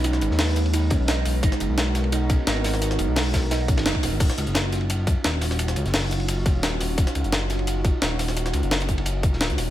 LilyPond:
<<
  \new Staff \with { instrumentName = "Analog synth pad" } { \time 4/4 \key ees \minor \tempo 4 = 173 << { <des' ees' b'>1 | <ces' ges' bes'>1~ | <ces' ges' bes'>1 | <des' ees' ges'>1~ |
<des' ees' ges'>1~ | <des' ees' ges'>1~ | <des' ees' ges'>1 | } \\ { gis1~ | gis1~ | gis1 | f'1~ |
f'1~ | f'1~ | f'1 | } >> }
  \new Staff \with { instrumentName = "Synth pluck" } { \time 4/4 \key ees \minor dis'16 r4. r16 dis'8 cis'16 r16 dis'8 r8 | ees'16 r4. r16 ees'8 des'16 r16 ees'8 r8 | ees'16 r4. r16 ees'8 des'16 r16 ees'8 r8 | r1 |
r1 | r1 | r1 | }
  \new Staff \with { instrumentName = "Analog synth bass" } { \clef bass \time 4/4 \key ees \minor b,,8 gis,,16 dis,2 b,,8. b,,8 | aes,,16 r16 ges,,16 ces,2 r16 aes,,4~ | aes,,8 ges,,16 ces,2 aes,,16 ges,,16 r16 ees,,16 aes,,16 | ees,,16 r16 des,16 ges,,2 r16 ees,,4~ |
ees,,8 des,16 ges,,2 ees,,8. ees,,8 | ees,,16 r16 des,16 ges,,2 r16 ees,,4~ | ees,,8 des,16 ges,,2 ees,,8 des,16 ees,,8 | }
  \new DrumStaff \with { instrumentName = "Drums" } \drummode { \time 4/4 <hh cymr>16 sn16 <hh cymr>16 sn16 <hh hho sn>16 sn16 <hh cymr>16 cymr16 <hh cymr>8 <hh bd cymr>8 <hh cymr sn>8 <hho cymr>8 | <hh bd cymr>16 sn16 <hh cymr>8 <hh cymr sn>8 <hh cymr sn>16 cymr16 <hh cymr>8 <hh bd cymr>8 <hh cymr sn>16 cymr16 <hho cymr sn>16 sn16 | <hh cymr sn>16 <cymr sn>16 <hh cymr>8 <hh hho sn>16 sn16 <hh bd cymr sn>16 cymr16 <hh cymr sn>16 cymr16 <hh bd cymr>16 <cymr sn>16 <hh cymr sn>16 <bd cymr>16 <hho cymr sn>8 | <cymc hh bd cymr>16 <hh sn>16 <hh cymr>16 hh16 <hh cymr sn>8 <hh cymr sn>16 cymr16 <hh cymr>8 <hh bd cymr>8 <hh cymr sn>16 cymr16 <hho cymr sn>16 sn16 |
<hh cymr>16 <hh sn>16 <hh cymr>16 <hh sn>16 <hh hho sn>16 sn16 <hh cymr>16 cymr16 <hh cymr>8 <hh bd cymr>8 <hh cymr sn>8 <hho cymr sn>8 | <hh bd cymr>16 <hh sn>16 <hh cymr>16 hh16 <hh cymr sn>8 <hh cymr sn>16 cymr16 <hh cymr>8 <hh bd cymr>8 <hh cymr sn>16 cymr16 <hho cymr sn>16 sn16 | <hh cymr>16 <hh sn>16 <hh cymr>16 hh16 <hh cymr sn>16 <hh cymr>16 <hh bd>16 cymr16 <hh cymr>8 <hh bd cymr>16 sn16 <hh cymr sn>16 hh16 <hho cymr sn>8 | }
>>